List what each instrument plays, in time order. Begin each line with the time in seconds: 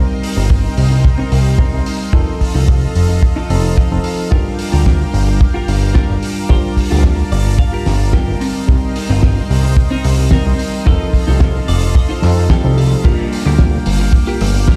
Already playing: tine electric piano G3 C4 D#4 A#4, clean electric guitar C4 D#4 A#4, analog synth pad A#4 D#5 G5 C6
0.23 open hi-hat
0.36 analog synth bass G1, clean electric guitar C4 D#4 A#4
0.50 kick
0.77 analog synth bass C2, open hi-hat
0.91 muted clean electric guitar stroke
1.04 muted clean electric guitar stroke, kick
1.18 clean electric guitar C4 D#4 A#4
1.32 analog synth bass C2, open hi-hat
1.45 muted clean electric guitar stroke
1.58 tine electric piano G3 C4 D#4 A#4, clean electric guitar C4 D#4 A#4, kick
1.73 analog synth bass C2
1.86 open hi-hat
2.13 analog synth bass F1, tine electric piano F3 C4 D#4 A4, clean electric guitar D#4 F4 A4, analog synth pad A4 D#5 F5, kick
2.41 kick, open hi-hat
2.54 analog synth bass C2, clean electric guitar D#4 F4 A4
2.68 kick
2.95 analog synth bass F1, open hi-hat
3.09 muted clean electric guitar stroke
3.22 muted clean electric guitar stroke, kick
3.36 clean electric guitar D#4 F4 A4
3.50 analog synth bass F1, tine electric piano F3 C4 D#4 A4, open hi-hat
3.63 muted clean electric guitar stroke
3.76 clean electric guitar D#4 F4 A4, kick
3.91 analog synth bass F1, tine electric piano F3 C4 D#4 A4
4.04 open hi-hat
4.31 analog synth bass G1, tine electric piano D4 F4 A#4, clean electric guitar F4 G4 A#4, analog synth pad A#4 G5 D6, kick
4.59 open hi-hat
4.72 analog synth bass D2, clean electric guitar F4 G4 A#4
4.86 kick, snare
5.14 analog synth bass G1, open hi-hat
5.27 muted clean electric guitar stroke
5.40 muted clean electric guitar stroke, kick
5.54 clean electric guitar F4 G4 A#4
5.68 analog synth bass G1, open hi-hat
5.81 muted clean electric guitar stroke
5.94 tine electric piano G3 D4 F4 A#4, clean electric guitar F4 G4 A#4, kick, snare
6.10 analog synth bass G1
6.23 open hi-hat
6.49 analog synth bass G1, tine electric piano G3 D4 F4 A#4, clean electric guitar F4 G4 C5, analog synth pad A5, kick
6.77 kick, open hi-hat
6.90 analog synth bass D2, clean electric guitar F4 G4 A#4
7.04 kick, snare
7.32 analog synth bass G1, clean electric guitar D5, open hi-hat
7.45 muted clean electric guitar stroke
7.58 clean electric guitar F5, muted clean electric guitar stroke, kick
7.72 clean electric guitar F4 G4 A#4
7.86 analog synth bass G1, snare, open hi-hat
8.00 muted clean electric guitar stroke
8.13 tine electric piano G3 C4 D#4 A#4, clean electric guitar F4 G4 A#4 G5, kick, snare
8.28 analog synth bass G1
8.40 clean electric guitar C4 D#4 A#4, analog synth pad D#5 G5 C6, open hi-hat
8.67 analog synth bass C2, tine electric piano G3 C4 D#4 A#4, kick
8.96 open hi-hat
9.09 analog synth bass G1, clean electric guitar C4 D#4 F4
9.23 kick, snare
9.50 analog synth bass C2, open hi-hat
9.63 muted clean electric guitar stroke
9.77 muted clean electric guitar stroke, kick
9.90 clean electric guitar C4 D#4 A#4
10.04 analog synth bass C2, open hi-hat
10.18 muted clean electric guitar stroke
10.31 tine electric piano G3 C4 D#4 A#4, clean electric guitar C4 D#4 A#4, kick, snare
10.46 analog synth bass C2
10.59 open hi-hat
10.86 analog synth bass F1, tine electric piano F3 C4 D#4 A4, clean electric guitar D#4 F4 A4, analog synth pad A4 F5, kick
11.13 kick, open hi-hat
11.27 analog synth bass C2, clean electric guitar D#4 F4 A4
11.40 kick, snare
11.68 analog synth bass F1, clean electric guitar D5, open hi-hat
11.82 muted clean electric guitar stroke
11.95 clean electric guitar D#5, muted clean electric guitar stroke, kick, swell
12.09 clean electric guitar D#4 F4 C5
12.22 analog synth bass F2, tine electric piano F3 C4 D#4 A4, snare, open hi-hat
12.36 muted clean electric guitar stroke
12.50 clean electric guitar D#4 F4 A4 G5, kick, snare
12.64 analog synth bass C2, tine electric piano F3 C4 D#4 A4
12.78 clean electric guitar A5, open hi-hat
13.04 analog synth bass G1, tine electric piano G3 A#3 D4 F4, analog synth pad A#3 F5 G5 D6, clean electric guitar F4 G4 A#4, kick, crash
13.33 open hi-hat
13.45 analog synth bass D2, clean electric guitar F4 G4 A#4, cross-stick
13.59 kick, snare
13.86 analog synth bass G1, open hi-hat
14.00 muted clean electric guitar stroke
14.13 muted clean electric guitar stroke, kick
14.27 clean electric guitar F4 G4 A#4
14.41 analog synth bass G1, cross-stick, open hi-hat
14.54 muted clean electric guitar stroke
14.67 tine electric piano G3 A#3 D4 F4, clean electric guitar F4 G4 A#4, kick, snare